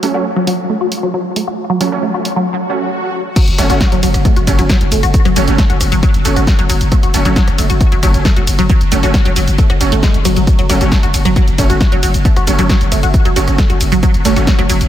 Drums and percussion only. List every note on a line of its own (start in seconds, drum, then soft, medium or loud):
0.03 open hi-hat medium
0.47 open hi-hat loud
0.92 open hi-hat medium
1.36 open hi-hat loud
1.81 open hi-hat loud
2.25 open hi-hat loud
3.36 kick loud
3.36 closed hi-hat medium
3.36 crash loud
3.36 shaker soft
3.48 closed hi-hat medium
3.48 shaker soft
3.58 cross-stick medium
3.58 open hi-hat loud
3.58 ride medium
3.58 shaker medium
3.70 closed hi-hat medium
3.70 shaker soft
3.81 kick loud
3.81 snare loud
3.81 closed hi-hat medium
3.81 shaker soft
3.92 closed hi-hat medium
3.92 shaker soft
4.03 open hi-hat loud
4.03 ride medium
4.03 shaker medium
4.14 cross-stick medium
4.14 closed hi-hat medium
4.14 shaker soft
4.25 kick loud
4.25 closed hi-hat medium
4.25 shaker soft
4.36 closed hi-hat medium
4.36 shaker soft
4.47 kick medium
4.47 open hi-hat loud
4.47 ride medium
4.47 shaker medium
4.59 closed hi-hat medium
4.59 shaker soft
4.69 kick loud
4.69 cross-stick medium
4.69 snare loud
4.69 closed hi-hat medium
4.69 shaker soft
4.81 closed hi-hat medium
4.81 shaker soft
4.92 open hi-hat loud
4.92 ride medium
4.92 shaker medium
5.03 closed hi-hat medium
5.03 shaker soft
5.14 kick loud
5.14 closed hi-hat medium
5.14 shaker soft
5.25 cross-stick medium
5.25 closed hi-hat medium
5.25 shaker soft
5.36 open hi-hat loud
5.36 ride medium
5.36 shaker medium
5.48 closed hi-hat medium
5.48 shaker soft
5.58 kick loud
5.58 snare loud
5.58 closed hi-hat medium
5.58 shaker soft
5.70 closed hi-hat medium
5.70 shaker soft
5.81 cross-stick medium
5.81 open hi-hat loud
5.81 ride medium
5.81 shaker medium
5.92 closed hi-hat medium
5.92 shaker soft
6.03 kick loud
6.03 closed hi-hat medium
6.03 shaker soft
6.14 closed hi-hat medium
6.14 shaker soft
6.25 open hi-hat loud
6.25 ride medium
6.25 shaker medium
6.36 cross-stick medium
6.36 closed hi-hat medium
6.36 shaker soft
6.47 kick loud
6.47 snare loud
6.47 closed hi-hat medium
6.47 shaker soft
6.59 closed hi-hat medium
6.59 shaker soft
6.70 open hi-hat loud
6.70 ride medium
6.70 shaker medium
6.81 closed hi-hat medium
6.81 shaker soft
6.92 kick loud
6.92 cross-stick medium
6.92 closed hi-hat medium
6.92 shaker soft
7.03 closed hi-hat medium
7.03 shaker soft
7.14 open hi-hat loud
7.14 ride medium
7.14 shaker medium
7.25 closed hi-hat medium
7.25 shaker soft
7.36 kick loud
7.36 snare loud
7.36 closed hi-hat medium
7.36 shaker soft
7.48 cross-stick medium
7.48 closed hi-hat medium
7.48 shaker soft
7.58 open hi-hat loud
7.58 ride medium
7.58 shaker medium
7.70 closed hi-hat medium
7.70 shaker soft
7.81 kick loud
7.81 closed hi-hat medium
7.81 shaker soft
7.92 closed hi-hat medium
7.92 shaker soft
8.03 kick medium
8.03 cross-stick medium
8.03 open hi-hat loud
8.03 ride medium
8.03 shaker medium
8.14 closed hi-hat medium
8.14 shaker soft
8.25 kick loud
8.25 snare loud
8.25 closed hi-hat medium
8.25 shaker soft
8.36 closed hi-hat medium
8.36 shaker soft
8.47 open hi-hat loud
8.47 ride medium
8.47 shaker medium
8.59 cross-stick medium
8.59 closed hi-hat medium
8.59 shaker soft
8.70 kick loud
8.70 closed hi-hat medium
8.70 shaker soft
8.81 closed hi-hat medium
8.81 shaker soft
8.92 open hi-hat loud
8.92 ride medium
8.92 shaker medium
9.03 closed hi-hat medium
9.03 shaker soft
9.14 kick loud
9.14 cross-stick medium
9.14 snare loud
9.14 closed hi-hat medium
9.14 shaker soft
9.25 closed hi-hat medium
9.25 shaker soft
9.36 open hi-hat loud
9.36 ride medium
9.36 shaker medium
9.48 closed hi-hat medium
9.48 shaker soft
9.58 kick loud
9.58 closed hi-hat medium
9.58 shaker soft
9.70 cross-stick medium
9.70 closed hi-hat medium
9.70 shaker soft
9.81 open hi-hat loud
9.81 ride medium
9.81 shaker medium
9.92 closed hi-hat medium
9.92 shaker soft
10.03 kick loud
10.03 snare loud
10.03 closed hi-hat medium
10.03 shaker soft
10.14 closed hi-hat medium
10.14 shaker soft
10.25 cross-stick medium
10.25 open hi-hat loud
10.25 ride medium
10.25 shaker medium
10.36 closed hi-hat medium
10.36 shaker soft
10.47 kick loud
10.47 closed hi-hat medium
10.47 shaker soft
10.59 closed hi-hat soft
10.59 shaker soft
10.70 cross-stick medium
10.70 open hi-hat loud
10.70 ride medium
10.70 shaker medium
10.81 closed hi-hat soft
10.81 shaker soft
10.92 kick loud
10.92 snare loud
10.92 closed hi-hat medium
10.92 shaker soft
11.03 closed hi-hat medium
11.03 shaker soft
11.14 open hi-hat loud
11.14 ride medium
11.14 shaker medium
11.25 cross-stick medium
11.25 closed hi-hat medium
11.25 shaker soft
11.36 kick loud
11.36 closed hi-hat medium
11.36 shaker soft
11.48 closed hi-hat medium
11.48 shaker soft
11.58 kick medium
11.58 open hi-hat loud
11.58 ride medium
11.58 shaker medium
11.70 closed hi-hat soft
11.70 shaker soft
11.81 kick loud
11.81 cross-stick medium
11.81 snare loud
11.81 closed hi-hat medium
11.81 shaker soft
11.92 closed hi-hat medium
11.92 shaker soft
12.03 open hi-hat loud
12.03 ride medium
12.03 shaker medium
12.14 closed hi-hat medium
12.14 shaker soft
12.25 kick loud
12.25 closed hi-hat medium
12.25 shaker soft
12.36 cross-stick medium
12.36 closed hi-hat medium
12.36 shaker soft
12.47 open hi-hat loud
12.47 ride medium
12.47 shaker medium
12.59 closed hi-hat medium
12.59 shaker soft
12.69 kick loud
12.69 snare loud
12.69 closed hi-hat medium
12.69 shaker soft
12.81 closed hi-hat medium
12.81 shaker soft
12.92 cross-stick medium
12.92 open hi-hat loud
12.92 ride medium
12.92 shaker medium
13.03 closed hi-hat medium
13.03 shaker soft
13.14 kick loud
13.14 closed hi-hat medium
13.14 shaker soft
13.25 closed hi-hat medium
13.25 shaker soft
13.36 open hi-hat loud
13.36 ride medium
13.36 shaker medium
13.48 cross-stick medium
13.48 closed hi-hat medium
13.48 shaker soft
13.58 kick loud
13.58 snare loud
13.58 closed hi-hat medium
13.58 shaker soft
13.70 closed hi-hat medium
13.70 shaker soft
13.81 open hi-hat loud
13.81 ride medium
13.81 shaker medium
13.92 closed hi-hat soft
13.92 shaker soft
14.03 kick loud
14.03 cross-stick medium
14.03 closed hi-hat medium
14.03 shaker soft
14.14 closed hi-hat medium
14.14 shaker soft
14.25 open hi-hat loud
14.25 ride medium
14.25 shaker medium
14.36 closed hi-hat medium
14.36 shaker soft
14.47 kick loud
14.47 snare loud
14.47 closed hi-hat medium
14.47 shaker soft
14.59 cross-stick medium
14.59 closed hi-hat medium
14.59 shaker soft
14.70 open hi-hat loud
14.70 ride medium
14.70 shaker medium
14.81 closed hi-hat medium
14.81 shaker soft